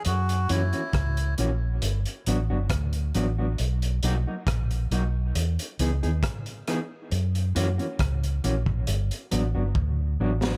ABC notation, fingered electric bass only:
X:1
M:4/4
L:1/16
Q:1/4=68
K:F#mix
V:1 name="Fingered electric bass" clef=bass
F,,2 F,, z C,,2 A,,,2 =G,,, z =A,,, G,,, =D,,2 A,,,2 | B,,,2 B,,, z A,,,2 B,,,2 E,, z C,, D,, z4 | F,,2 F,, z C,,2 A,,,2 =G,,, z =A,,, G,,, =D,,2 A,,,2 |]